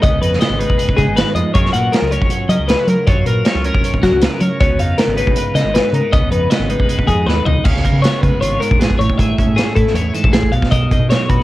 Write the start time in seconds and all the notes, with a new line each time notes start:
Already playing: D#4
0.03 C#2 C#3 B3 D#5, kick, closed hi-hat
0.21 F2 D#4 B4, closed hi-hat
0.33 snare
0.41 B3 D#5, snare, closed hi-hat
0.49 G#1
0.59 G#3 D#4 B4, closed hi-hat
0.70 kick
0.78 G#4, closed hi-hat
0.88 B4, kick
0.97 G#2 C#3 D#4 G#4, kick, closed hi-hat
1.07 G#1
1.16 D#3 B4, snare, closed hi-hat
1.35 F2 F3 D#5, closed hi-hat
1.54 F#2 F#3 C#4 F4 A#4 C#5, kick, closed hi-hat
1.66 snare
1.73 A#2 A#4 F#5, closed hi-hat
1.92 F4 A#4, snare, closed hi-hat
2.02 C#2
2.11 C#4 A#4 C#5, closed hi-hat
2.22 kick
2.30 C#5, closed hi-hat
2.49 C#3 F#3 A#4 D#5, closed hi-hat
2.59 C#2
2.68 G#4 B4, snare, closed hi-hat
2.79 B4
2.87 F#3 A#4, closed hi-hat
3.07 F#2 F#3 F4 C#5, kick, closed hi-hat
3.26 A#2 A#4, closed hi-hat
3.45 D#4 C#5, snare, closed hi-hat
3.55 C#2 F4
3.64 C#4 A#4, closed hi-hat
3.75 kick
3.84 C#5, closed hi-hat
3.94 kick
4.03 C#3 F#3 F#4 A#4, kick, snare, closed hi-hat
4.11 C#2
4.22 A#4 B4, snare, closed hi-hat
4.40 F#3 A#4 C#5, closed hi-hat
4.60 C#2 C#3 B3 C#5, kick, closed hi-hat
4.79 F2 D#4 F5, closed hi-hat
4.98 B3 A#4, snare, closed hi-hat
5.07 G#1
5.17 G#3 D#4 B4, closed hi-hat
5.27 kick
5.36 B4, closed hi-hat
5.55 G#2 C#3 D#4 D#5, snare, closed hi-hat
5.64 G#1
5.74 G#4 B4, snare, closed hi-hat
5.85 B4
5.93 C#3 D#4 A#4, closed hi-hat
6.12 C#2 C#3 B3 D#5, kick, closed hi-hat
6.31 F2 D#4 B4, closed hi-hat
6.50 B3 D#5, snare, closed hi-hat
6.59 G#1
6.70 G#3 D#4 B4, closed hi-hat
6.80 kick
6.89 G#4, closed hi-hat
6.98 B4, kick
7.07 F2 G#2 D#4 G#4, kick, closed hi-hat
7.26 D#2 B4, snare
7.45 C#2 D#4 D#5, floor tom
7.64 C#2 C#3 F5, kick, crash
7.77 snare
7.85 A#4, kick, closed hi-hat
7.93 C#3
8.02 B3 C#5, snare, closed hi-hat
8.22 C#3 G#3 B4, kick, closed hi-hat
8.41 G#1 F4 C#5, closed hi-hat
8.60 G#2 A#4, closed hi-hat
8.71 A#1, kick
8.79 B3 G#4, snare, closed hi-hat
8.90 kick
8.99 A1 A2 C#5, closed hi-hat
9.10 kick
9.18 A1 G#4 E5, kick, closed hi-hat
9.38 C#4, kick, closed hi-hat
9.47 A2
9.56 A3 G#4, snare, closed hi-hat
9.75 A2 E4 A4, kick, closed hi-hat
9.87 snare
9.94 E2 E3 C#5, closed hi-hat
10.14 G#2 A4, closed hi-hat
10.24 A#1, kick
10.33 A2 G#4, snare, closed hi-hat
10.43 kick
10.52 B1 B2 F5, closed hi-hat
10.62 kick, snare
10.71 B1 A#4 D#5, kick, closed hi-hat
10.91 D#4, kick, closed hi-hat
10.99 B2
11.10 F#3 C#5, snare, closed hi-hat
11.29 B2 F#4 B4, kick, closed hi-hat